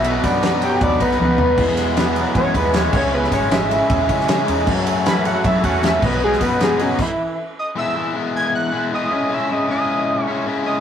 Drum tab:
CC |----------------|x-------------x-|----------------|x-------------x-|
RD |x-x-x-x-x-x-----|--x-x-x-x-x-x---|--x-x-x-x-x-x-x-|--x-x-x-x-x-x---|
SD |--o-o------o----|--o-o-------o---|-oo-o------oo---|----o-------o---|
T1 |------------o---|----------------|----------------|----------------|
FT |--------------o-|----------------|----------------|----------------|
BD |--o-----o-o-----|o-------o-o---o-|--o-----o-o-----|o-------o-o---o-|

CC |--------x-------|----------------|----------------|
RD |--x-x-x---------|----------------|----------------|
SD |-oo-o-----------|----------------|----------------|
T1 |----------------|----------------|----------------|
FT |----------------|----------------|----------------|
BD |--o-----o-------|----------------|----------------|